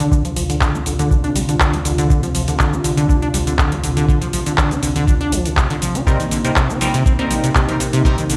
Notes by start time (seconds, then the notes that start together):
Already playing: D2 C3 F4
0.00 D3, closed hi-hat, cabasa
0.12 D3, kick, cabasa
0.25 F3, closed hi-hat, cabasa
0.36 F3, open hi-hat, cabasa
0.50 D3, closed hi-hat, cabasa
0.61 D3, kick, clap, cabasa
0.74 D4, cabasa
0.86 D3, open hi-hat, cabasa
0.99 D3, closed hi-hat, cabasa
1.11 D4, kick, cabasa
1.24 D4, closed hi-hat
1.36 G3, open hi-hat, cabasa
1.49 D3, closed hi-hat, cabasa
1.60 D3, kick, clap, cabasa
1.73 A3, closed hi-hat
1.85 D3, open hi-hat, cabasa
1.98 D3, closed hi-hat, cabasa
2.10 D3, kick, cabasa
2.23 F3, closed hi-hat, cabasa
2.35 F3, open hi-hat, cabasa
2.48 D3, closed hi-hat, cabasa
2.59 D3, kick, clap, cabasa
2.73 D4, cabasa
2.84 D3, open hi-hat, cabasa
2.97 D3, closed hi-hat, cabasa
3.09 D4, kick, cabasa
3.22 D4, closed hi-hat
3.34 G3, open hi-hat, cabasa
3.47 D3, closed hi-hat, cabasa
3.59 D3, kick, clap, cabasa
3.72 A3, closed hi-hat
3.83 D3, open hi-hat, cabasa
3.97 D3, closed hi-hat, cabasa
4.08 D3, kick, cabasa
4.21 F3, closed hi-hat, cabasa
4.33 F3, open hi-hat, cabasa
4.46 D3, closed hi-hat, cabasa
4.58 D3, kick, clap, cabasa
4.71 D4, closed hi-hat, cabasa
4.83 D3, open hi-hat, cabasa
4.96 D3, closed hi-hat, cabasa
5.07 D4, kick, cabasa
5.21 D4, closed hi-hat
5.32 F3, open hi-hat, cabasa
5.45 D3, closed hi-hat, cabasa
5.57 C3, kick, clap, cabasa
5.70 D3, closed hi-hat
5.82 F3, open hi-hat, cabasa
5.95 D4, closed hi-hat, cabasa
6.06 C3 G3 A#3 C4 D#4 A#4, kick, cabasa
6.20 D#3, closed hi-hat, cabasa
6.31 D3, open hi-hat, cabasa
6.44 C3 G3 C4 D#4 A#4, closed hi-hat, cabasa
6.56 C3, kick, clap, cabasa
6.69 C4, cabasa
6.81 F3 G3 C4 D#4 A#4, open hi-hat, cabasa
6.94 C3, closed hi-hat, cabasa
7.06 C4, kick, cabasa
7.19 G3 C4 D#4 A#4, closed hi-hat
7.30 F3, open hi-hat, cabasa
7.44 C3, closed hi-hat, cabasa
7.55 C3, kick, clap, cabasa
7.68 G3 C4 D#4 A#4, closed hi-hat
7.80 C3, open hi-hat, cabasa
7.93 C3, closed hi-hat, cabasa
8.05 G3 C4 D#4 A#4, kick, cabasa
8.18 D#3, closed hi-hat, cabasa
8.30 D3, open hi-hat, cabasa